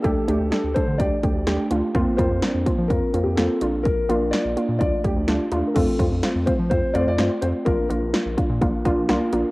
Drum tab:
CC |--------|--------|--------|x-------|
HH |xxxxxxxx|xxxxxxxx|xxxxxxxx|xxxxxxxx|
SD |--o---o-|--o---o-|--o---o-|--o---o-|
BD |o--ooo--|oo-oo---|o---oo--|oo-oo---|

CC |--------|
HH |xxxxxxxx|
SD |--o---o-|
BD |o--ooo--|